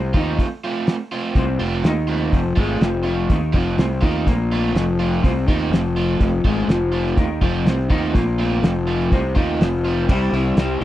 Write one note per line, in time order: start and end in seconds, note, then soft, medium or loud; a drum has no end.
0.00 0.13 C2 medium
0.00 0.14 C3 medium
0.00 0.14 C4 medium
0.14 0.37 D#2 medium
0.14 0.38 D#3 medium
0.14 0.46 A3 medium
0.14 0.46 C4 medium
0.14 0.39 D#4 medium
0.14 0.46 F4 medium
0.14 kick medium
0.39 kick medium
0.39 open hi-hat soft
0.64 0.96 A3 medium
0.64 0.95 C4 medium
0.64 0.95 F4 medium
0.87 snare medium
0.87 open hi-hat soft
1.12 1.44 A3 medium
1.12 1.43 C4 medium
1.12 1.43 F4 medium
1.35 1.58 C2 medium
1.35 1.60 C3 medium
1.35 1.60 C4 loud
1.35 kick medium
1.35 open hi-hat soft
1.59 1.82 F1 medium
1.59 1.80 F2 medium
1.59 1.92 A3 medium
1.59 1.91 C4 medium
1.59 1.91 F4 medium
1.84 2.29 D#2 medium
1.84 2.33 D#3 medium
1.84 2.33 D#4 medium
1.84 snare loud
1.84 open hi-hat soft
2.07 2.40 A3 medium
2.07 2.40 C4 medium
2.07 2.39 F4 medium
2.32 2.55 F1 medium
2.32 2.56 F2 medium
2.32 2.57 F3 medium
2.32 kick medium
2.32 open hi-hat soft
2.56 2.80 G#1 medium
2.56 2.81 G#2 medium
2.56 2.82 G#3 medium
2.56 2.88 A3 medium
2.56 2.88 C4 medium
2.56 2.88 F4 medium
2.56 kick medium
2.81 3.26 F1 medium
2.81 3.29 F2 medium
2.81 3.30 F3 medium
2.81 snare loud
2.81 open hi-hat soft
3.03 3.37 A3 medium
3.03 3.36 C4 medium
3.03 3.36 F4 medium
3.30 3.52 D#2 medium
3.30 3.54 D#3 medium
3.30 3.55 D#4 medium
3.30 kick medium
3.30 open hi-hat soft
3.53 3.76 F1 medium
3.53 3.78 F2 medium
3.53 3.78 F3 medium
3.53 3.86 A3 medium
3.53 3.85 C4 medium
3.53 3.85 F4 medium
3.53 kick medium
3.77 4.01 C2 medium
3.77 4.01 C3 medium
3.77 4.02 C4 medium
3.77 snare loud
3.77 open hi-hat medium
4.01 4.25 D#2 medium
4.01 4.26 D#3 medium
4.01 4.34 A3 medium
4.01 4.33 C4 medium
4.01 4.26 D#4 medium
4.01 4.33 F4 medium
4.01 kick medium
4.26 4.72 A#1 medium
4.26 4.74 A#2 medium
4.26 4.75 A#3 medium
4.26 kick medium
4.26 open hi-hat soft
4.52 4.84 A3 medium
4.52 4.83 C4 medium
4.52 4.83 F4 medium
4.74 5.20 F1 medium
4.74 5.22 F2 medium
4.74 5.23 F3 medium
4.74 snare loud
4.74 open hi-hat soft
4.99 5.31 A3 medium
4.99 5.31 C4 medium
4.99 5.31 F4 medium
5.23 5.46 C2 medium
5.23 5.46 C3 medium
5.23 5.47 C4 loud
5.23 kick medium
5.23 open hi-hat soft
5.46 5.69 D#2 medium
5.46 5.71 D#3 medium
5.46 5.80 A3 medium
5.46 5.80 C4 medium
5.46 5.71 D#4 medium
5.46 5.80 F4 medium
5.46 kick medium
5.70 6.16 F1 medium
5.70 6.19 F2 medium
5.70 6.20 F3 medium
5.70 snare loud
5.70 open hi-hat soft
5.96 6.29 A3 medium
5.96 6.28 C4 medium
5.96 6.28 F4 medium
6.20 6.43 F1 medium
6.20 6.44 F2 medium
6.20 6.44 F3 loud
6.20 kick medium
6.20 open hi-hat soft
6.44 6.67 G#1 medium
6.44 6.69 G#2 medium
6.44 6.69 G#3 medium
6.44 6.77 A3 medium
6.44 6.77 C4 medium
6.44 6.76 F4 medium
6.44 kick medium
6.68 7.14 F1 medium
6.68 7.17 F2 medium
6.68 7.18 F3 medium
6.68 snare medium
6.68 open hi-hat soft
6.92 7.25 A3 medium
6.92 7.25 C4 medium
6.92 7.24 F4 medium
7.07 snare soft
7.17 7.40 D#2 medium
7.17 7.42 D#3 medium
7.17 7.42 D#4 medium
7.17 kick medium
7.17 open hi-hat soft
7.41 7.64 F1 medium
7.41 7.65 F2 medium
7.41 7.66 F3 medium
7.41 7.74 A3 medium
7.41 7.74 C4 medium
7.41 7.74 F4 medium
7.41 kick medium
7.65 7.89 C2 medium
7.65 7.89 C3 medium
7.65 7.90 C4 medium
7.65 snare loud
7.65 open hi-hat soft
7.80 snare soft
7.89 8.13 D#2 medium
7.89 8.13 D#3 medium
7.89 8.23 A3 medium
7.89 8.22 C4 medium
7.89 8.14 D#4 loud
7.89 8.22 F4 medium
7.89 kick medium
8.14 8.60 A#1 medium
8.14 8.62 A#2 medium
8.14 8.63 A#3 medium
8.14 kick medium
8.14 open hi-hat medium
8.38 8.71 A3 medium
8.38 8.71 C4 medium
8.38 8.71 F4 medium
8.63 9.08 F1 medium
8.63 9.11 F2 medium
8.63 9.12 F3 medium
8.63 snare loud
8.63 open hi-hat soft
8.87 9.20 A3 medium
8.87 9.19 C4 medium
8.87 9.19 F4 medium
9.00 snare soft
9.12 9.34 C2 medium
9.12 9.35 C3 medium
9.12 9.36 C4 loud
9.12 kick medium
9.12 open hi-hat soft
9.35 9.59 D#2 medium
9.35 9.60 D#3 medium
9.35 9.68 A3 medium
9.35 9.68 C4 medium
9.35 9.60 D#4 medium
9.35 9.67 F4 medium
9.35 kick medium
9.60 10.06 F1 medium
9.60 10.08 F2 medium
9.60 10.09 F3 medium
9.60 snare loud
9.60 open hi-hat soft
9.85 10.10 A3 medium
9.85 10.10 C4 medium
9.85 10.09 F4 medium
10.08 10.29 C2 medium
10.08 10.57 C3 medium
10.08 10.56 G3 medium
10.08 10.81 G3 medium
10.08 10.35 C4 medium
10.08 10.33 E4 medium
10.08 10.31 G4 medium
10.08 kick loud
10.08 crash loud
10.32 10.53 C2 medium
10.32 10.57 C4 medium
10.32 10.84 E4 medium
10.32 10.58 E4 medium
10.32 10.59 G4 medium
10.32 open hi-hat soft
10.57 10.77 C2 medium
10.57 10.82 G3 medium
10.57 10.81 C4 medium
10.57 10.84 C4 medium
10.57 10.80 E4 medium
10.57 10.79 G4 medium
10.57 snare loud
10.57 open hi-hat medium
10.81 10.84 C2 medium
10.81 10.84 G4 medium